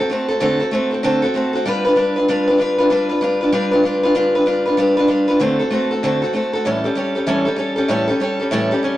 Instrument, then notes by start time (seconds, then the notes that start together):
steel-string acoustic guitar
0.00 C4 F#4
0.10 A3 C4 F#4 A4
0.28 C4 F#4 A4
0.40 D3 A3 C4 F#4 A4
0.60 C4 F#4 A4
0.71 A3 C4 F#4 A4
0.91 C4 F#4 A4
1.03 D3 A3 C4 F#4 A4
1.22 C4 F#4 A4
1.34 A3 C4 F#4 A4
1.53 C4 F#4 A4
1.65 G3 D4 F4 B4
1.85 D4 F4 B4
1.96 G3 D4 F4 B4
2.16 D4 F4 B4
2.28 G3 D4 F4 B4
2.48 D4 F4 B4
2.58 G3 D4 F4 B4
2.78 D4 F4 B4
2.90 G3 D4 F4 B4
3.09 D4 F4 B4
3.21 G3 D4 F4 B4
3.41 D4 F4 B4
3.52 G3 D4 F4 B4
3.71 D4 F4 B4
3.84 G3 D4 F4 B4
4.03 D4 F4 B4
4.15 G3 D4 F4 B4
4.35 D4 F4 B4
4.46 G3 D4 F4 B4
4.66 D4 F4 B4
4.77 G3 D4 F4 B4
4.97 D4 F4 B4
5.08 G3 D4 F4 B4
5.28 D4 F4 B4
5.40 D3 A3 C4 F#4 A4
5.59 C4 F#4 A4
5.71 A3 C4 F#4 A4
5.91 C4 F#4 A4
6.03 D3 A3 C4 F#4 A4
6.22 C4 F#4 A4
6.33 A3 C4 F#4 A4
6.53 C4 F#4 A4
6.65 A2 E3 G3 C#4 G4 A4
6.84 G3 C#4 G4 A4
6.95 G3 C#4 G4 A4
7.15 G3 C#4 G4 A4
7.27 A2 E3 G3 C#4 G4 A4
7.45 G3 C#4 G4 A4
7.56 G3 C#4 G4 A4
7.76 G3 C#4 G4 A4
7.88 A2 E3 G3 C#4 G4 A4
8.08 G3 C#4 G4 A4
8.20 G3 C#4 G4 A4
8.40 G3 C#4 G4 A4
8.51 A2 E3 G3 C#4 G4 A4
8.71 G3 C#4 G4 A4
8.83 G3 C#4 G4 A4